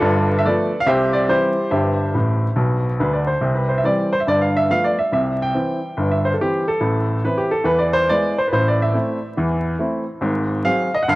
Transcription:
0.00 0.38 G1 medium
0.00 0.38 G2 medium
0.00 0.34 D4 medium
0.00 0.35 F4 medium
0.00 0.37 A4 loud
0.39 0.46 E5 medium
0.45 0.69 F3 soft
0.45 0.68 A3 soft
0.45 0.70 B3 soft
0.45 0.79 A4 medium
0.45 0.79 B4 medium
0.45 0.80 D5 medium
0.80 0.88 F5 medium
0.86 1.23 C2 medium
0.86 1.23 C3 medium
0.86 1.14 G4 medium
0.86 1.14 C5 medium
0.86 1.15 E5 medium
1.13 1.29 D5 medium
1.28 1.52 E3 soft
1.28 1.53 G3 soft
1.28 1.53 C4 medium
1.28 1.69 E4 medium
1.28 1.70 G4 medium
1.28 1.71 C5 medium
1.71 2.08 G1 medium
1.71 2.07 G2 medium
1.71 3.24 G4 medium
1.71 3.23 C5 soft
1.71 3.27 E5 medium
2.14 2.46 A1 medium
2.14 2.47 A2 medium
2.56 2.88 B1 medium
2.56 2.88 B2 medium
3.00 3.31 D2 medium
3.00 3.32 D3 medium
3.00 3.14 B4 medium
3.13 3.27 D5 medium
3.27 3.56 C5 medium
3.41 3.78 C2 medium
3.41 3.78 C3 medium
3.55 3.69 B4 medium
3.69 3.77 C5 medium
3.78 3.85 E5 medium
3.84 4.07 E3 soft
3.84 4.08 G3 soft
3.84 4.08 C4 soft
3.84 4.12 D5 medium
4.12 4.20 C5 medium
4.20 4.27 E5 medium
4.27 4.63 G1 medium
4.27 4.63 G2 medium
4.27 4.41 D5 medium
4.41 4.55 F5 medium
4.57 4.70 E5 medium
4.70 4.93 F3 soft
4.70 4.93 A3 soft
4.70 4.94 B3 soft
4.70 4.84 F5 medium
4.84 4.98 D5 medium
4.99 5.12 E5 medium
5.12 5.48 C2 medium
5.12 5.49 C3 medium
5.12 5.40 E5 medium
5.42 6.12 G5 medium
5.54 5.78 E3 soft
5.54 5.78 C4 soft
5.97 6.33 G1 medium
5.97 6.33 G2 medium
6.11 6.25 E5 medium
6.25 6.32 C5 medium
6.34 6.40 A4 soft
6.41 6.64 E3 soft
6.41 6.64 C4 soft
6.41 6.68 G4 medium
6.68 7.25 A4 medium
6.81 7.17 A1 medium
6.81 7.17 A2 medium
7.25 7.48 E3 soft
7.25 7.48 C4 soft
7.25 7.49 E4 soft
7.25 7.38 B4 medium
7.38 7.52 G4 medium
7.51 7.66 A4 medium
7.64 8.01 E2 medium
7.64 8.01 E3 medium
7.64 7.80 B4 medium
7.79 7.93 D5 medium
7.93 8.09 C5 loud
8.09 8.33 G#3 soft
8.09 8.33 B3 soft
8.09 8.33 E4 soft
8.09 8.37 D5 medium
8.38 8.45 C5 medium
8.48 8.53 B4 medium
8.52 8.88 A1 medium
8.52 8.88 A2 medium
8.52 8.66 C5 medium
8.68 8.81 D5 medium
8.82 9.66 E5 medium
8.94 9.18 A3 soft
8.94 9.17 C4 soft
8.94 9.18 E4 soft
9.37 9.73 E2 medium
9.37 9.73 E3 medium
9.79 10.02 A3 soft
9.79 10.03 C4 soft
9.79 10.03 E4 medium
10.21 10.57 G#1 medium
10.21 10.58 G#2 medium
10.65 10.88 F#3 soft
10.65 10.88 C4 soft
10.65 10.88 G#4 soft
10.65 10.92 F5 medium
10.95 11.01 D#5 medium
11.03 11.08 F#5 medium
11.08 11.15 G1 medium
11.08 11.15 G2 medium
11.08 11.15 F5 loud

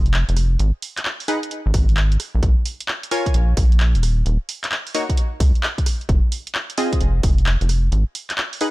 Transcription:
0.00 0.24 F1 medium
0.00 0.59 C4 medium
0.00 0.59 F4 medium
0.00 0.59 G#4 medium
0.00 0.59 D#5 loud
0.06 closed hi-hat soft
0.14 clap loud
0.29 0.57 F1 medium
0.29 closed hi-hat medium
0.37 cross-stick soft
0.37 open hi-hat loud
0.59 0.71 G#1 loud
0.59 closed hi-hat medium
0.82 open hi-hat loud
0.97 clap medium
0.97 closed hi-hat medium
1.05 clap loud
1.20 open hi-hat medium
1.28 1.38 D#4 medium
1.28 1.38 G#4 medium
1.28 1.38 B4 medium
1.28 1.38 F#5 medium
1.28 open hi-hat loud
1.43 closed hi-hat medium
1.51 closed hi-hat medium
1.66 1.72 G#1 medium
1.74 2.17 G#1 medium
1.74 kick loud
1.74 open hi-hat loud
1.89 closed hi-hat soft
1.97 clap loud
2.12 closed hi-hat medium
2.20 cross-stick soft
2.20 open hi-hat loud
2.35 2.41 A#1 medium
2.43 2.55 A#1 medium
2.43 kick loud
2.43 closed hi-hat medium
2.65 open hi-hat loud
2.80 closed hi-hat medium
2.88 clap loud
3.03 closed hi-hat medium
3.11 4.02 F4 medium
3.11 4.02 A#4 medium
3.11 4.02 C#5 medium
3.11 4.02 G#5 loud
3.11 open hi-hat loud
3.26 kick medium
3.26 closed hi-hat medium
3.34 3.54 A#1 medium
3.34 closed hi-hat medium
3.57 3.96 A#1 medium
3.57 kick loud
3.57 open hi-hat loud
3.72 closed hi-hat soft
3.80 clap loud
3.95 4.23 D#1 medium
3.95 closed hi-hat medium
4.03 cross-stick soft
4.03 open hi-hat loud
4.26 4.38 D#1 medium
4.26 closed hi-hat medium
4.49 open hi-hat loud
4.64 clap medium
4.64 closed hi-hat medium
4.72 clap loud
4.87 open hi-hat medium
4.95 5.05 A#3 medium
4.95 5.05 D#4 medium
4.95 5.05 F#4 medium
4.95 5.05 C#5 medium
4.95 open hi-hat loud
5.09 kick medium
5.09 closed hi-hat medium
5.17 closed hi-hat medium
5.40 5.52 C#2 medium
5.40 kick loud
5.40 open hi-hat loud
5.55 closed hi-hat soft
5.63 clap loud
5.78 kick medium
5.78 closed hi-hat medium
5.86 cross-stick soft
5.86 open hi-hat loud
6.01 closed hi-hat soft
6.09 6.21 F1 medium
6.09 kick loud
6.09 closed hi-hat medium
6.32 open hi-hat loud
6.47 closed hi-hat medium
6.55 clap loud
6.70 closed hi-hat medium
6.78 7.91 C4 medium
6.78 7.91 F4 medium
6.78 7.91 G#4 medium
6.78 7.91 D#5 loud
6.78 open hi-hat loud
6.93 kick medium
6.93 closed hi-hat medium
7.01 7.20 F1 medium
7.01 closed hi-hat medium
7.23 7.57 F1 medium
7.23 kick loud
7.23 open hi-hat loud
7.38 closed hi-hat soft
7.46 clap loud
7.61 7.90 F1 medium
7.61 closed hi-hat medium
7.69 cross-stick soft
7.69 open hi-hat loud
7.92 8.04 G#1 loud
7.92 closed hi-hat medium
8.15 open hi-hat loud
8.30 clap medium
8.30 closed hi-hat medium
8.38 clap loud
8.53 open hi-hat medium
8.61 8.71 D#4 medium
8.61 8.71 G#4 medium
8.61 8.71 B4 medium
8.61 8.71 F#5 medium
8.61 open hi-hat loud

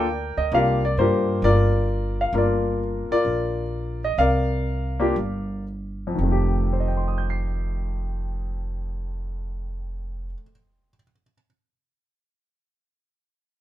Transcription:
0.00 0.33 D2 medium
0.00 0.50 A#4 medium
0.00 0.50 D5 medium
0.00 0.40 G5 loud
0.37 0.51 D2 medium
0.37 0.51 D#5 medium
0.52 0.94 C2 medium
0.52 0.80 A#3 medium
0.52 0.80 D4 soft
0.52 0.80 F4 soft
0.52 0.80 G4 medium
0.52 0.82 F5 medium
0.56 0.99 A#4 medium
0.56 0.83 D5 medium
0.85 0.97 D5 medium
0.97 1.39 G2 medium
0.97 1.68 A#3 medium
0.97 1.68 D4 medium
0.97 1.43 F4 medium
0.97 1.85 G4 medium
0.97 1.43 A#4 medium
0.97 1.40 C5 medium
1.42 2.29 G1 medium
1.42 2.30 F4 medium
1.42 2.30 A#4 medium
1.42 2.21 D5 medium
2.21 2.33 F5 medium
2.33 3.05 G1 medium
2.33 3.62 A#3 soft
2.33 3.62 D4 soft
2.33 2.36 F4 soft
2.33 3.10 A#4 medium
2.38 3.10 F4 medium
2.38 2.78 D5 medium
3.09 4.00 F4 medium
3.09 4.00 A#4 medium
3.09 4.06 D5 medium
3.09 muted upright bass stroke soft
3.25 4.14 A#1 medium
4.04 4.18 D#5 medium
4.18 5.11 C2 medium
4.18 5.63 A#4 medium
4.18 5.63 D5 medium
4.18 5.63 F5 medium
5.00 5.14 A#3 medium
5.00 5.14 D4 medium
5.00 5.15 F4 medium
5.00 5.15 G4 medium
5.16 6.15 G1 medium
6.07 10.26 F2 soft
6.15 10.33 F1 medium
6.15 10.34 D#3 soft
6.23 10.42 A3 soft
6.32 10.51 G4 medium
6.73 10.88 C5 soft
6.80 10.95 D#5 soft
6.88 11.03 G5 soft
6.97 11.12 C6 soft
7.08 11.23 D#6 soft
7.18 11.33 G6 soft
7.30 11.45 C7 soft

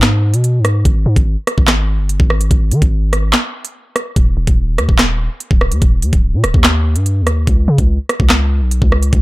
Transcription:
0.00 0.35 G#2 loud
0.00 snare loud
0.00 clap loud
0.00 closed hi-hat medium
0.34 0.61 B2 loud
0.34 closed hi-hat medium
0.44 closed hi-hat medium
0.59 0.84 G#2 loud
0.65 cross-stick medium
0.65 closed hi-hat medium
0.85 1.05 G#1 loud
0.85 kick loud
0.85 closed hi-hat medium
1.06 1.16 G#2 loud
1.16 1.36 G#1 loud
1.16 kick medium
1.16 closed hi-hat medium
1.47 cross-stick medium
1.47 closed hi-hat medium
1.58 2.00 G#1 loud
1.58 kick loud
1.67 snare loud
1.67 clap loud
1.67 closed hi-hat medium
1.99 2.19 G1 loud
2.09 closed hi-hat medium
2.20 2.50 G#1 loud
2.20 kick loud
2.30 cross-stick medium
2.41 closed hi-hat medium
2.51 2.73 G#1 loud
2.51 kick loud
2.51 closed hi-hat medium
2.71 2.81 D#3 loud
2.71 closed hi-hat medium
2.82 3.34 G#1 loud
2.82 kick loud
2.82 closed hi-hat medium
3.13 cross-stick medium
3.13 closed hi-hat medium
3.33 snare loud
3.33 clap loud
3.33 closed hi-hat medium
3.65 closed hi-hat medium
3.96 cross-stick medium
3.96 closed hi-hat medium
4.16 4.36 D#1 loud
4.16 kick loud
4.16 closed hi-hat medium
4.37 4.47 D#1 loud
4.47 4.80 D#1 loud
4.47 kick medium
4.47 closed hi-hat medium
4.78 4.88 D#2 loud
4.78 cross-stick loud
4.78 closed hi-hat medium
4.89 5.28 D#1 loud
4.89 kick loud
4.98 snare loud
4.98 clap loud
4.98 closed hi-hat medium
5.40 closed hi-hat medium
5.51 5.73 C#1 loud
5.51 kick loud
5.61 cross-stick medium
5.71 5.81 D#2 medium
5.71 closed hi-hat medium
5.82 6.04 D#1 loud
5.82 kick loud
5.82 closed hi-hat medium
6.02 6.12 D#2 loud
6.02 closed hi-hat medium
6.13 6.35 C#1 loud
6.13 kick medium
6.13 closed hi-hat medium
6.34 6.45 A#2 loud
6.44 6.54 C#1 loud
6.44 cross-stick medium
6.44 closed hi-hat medium
6.54 6.97 D#2 loud
6.54 kick loud
6.64 snare loud
6.64 clap loud
6.64 closed hi-hat medium
6.96 7.23 G2 loud
6.96 closed hi-hat medium
7.06 closed hi-hat medium
7.21 7.46 D#2 loud
7.27 cross-stick medium
7.27 closed hi-hat medium
7.47 7.67 C#2 loud
7.47 kick loud
7.47 closed hi-hat medium
7.68 7.78 C#3 loud
7.78 7.98 C#2 loud
7.78 kick medium
7.78 closed hi-hat medium
8.09 cross-stick medium
8.09 closed hi-hat medium
8.20 8.63 C#2 loud
8.20 kick loud
8.29 snare loud
8.29 clap loud
8.29 closed hi-hat medium
8.61 8.81 B1 loud
8.71 closed hi-hat medium
8.82 9.12 C#2 loud
8.82 kick loud
8.92 cross-stick medium
9.03 closed hi-hat medium
9.13 9.22 C#2 loud
9.13 kick loud
9.13 closed hi-hat medium

